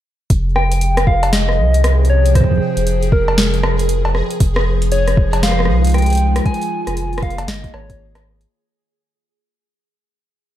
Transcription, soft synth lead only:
0.56 G5
1.07 F5
1.33 D#5
2.10 C#5
2.36 C5
3.12 A#4
4.92 C#5
5.43 F5
5.95 G5
6.46 G#5
7.23 F5
7.48 D#5
7.74 C#5

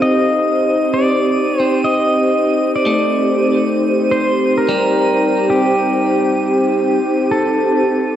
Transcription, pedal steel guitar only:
0.02 D#5
0.94 D5
1.61 C5
1.84 D#5
2.75 D5
4.11 C5
4.58 A#4
5.50 G4
7.31 A4

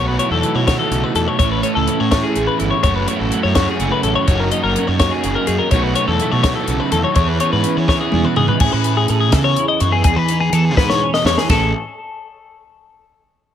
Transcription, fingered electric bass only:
Already playing: B1
0.30 E2
0.55 B2
0.91 B1
1.15 E2
1.39 A1
1.76 C#2
2.00 A2
2.36 A1
2.60 G1
2.83 F#1
3.20 A1
3.44 F#2
3.79 F#1
4.03 A1
4.28 F#1
4.63 F#1
4.88 F#2
5.24 F#1
5.48 F#2
5.72 B1
6.07 E2
6.32 B2
6.67 B1
6.92 E2
7.16 E2
7.52 G#2
7.77 E3
8.13 E2
8.37 G#2
8.60 A2
8.73 A2
9.10 A2
9.33 C#3
9.81 F#2
10.05 E2
10.16 E3
10.52 E3
10.77 G#2
11.24 E2
11.49 A1

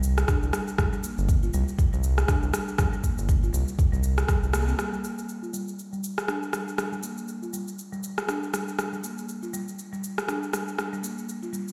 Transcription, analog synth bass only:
Already playing: C2
0.43 C2
0.78 C2
1.18 G1
1.54 C2
1.93 C2
2.43 C2
2.79 C2
3.18 G1
3.54 C2
3.93 C2
4.43 C2

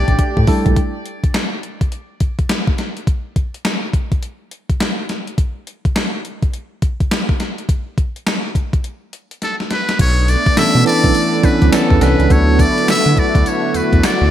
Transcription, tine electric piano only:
0.47 G3 A3 D4 E4 A4
10.56 E3 B3 C#4 D4 A4
10.85 E3 B3 D4 E4 A4
11.43 E3 B3 C#4 D4 B4
11.72 E3 B3 C#4 D4 A4
12.01 E3 B3 C#4 D4 A4
12.30 F#3 B3 D4 E4 A4

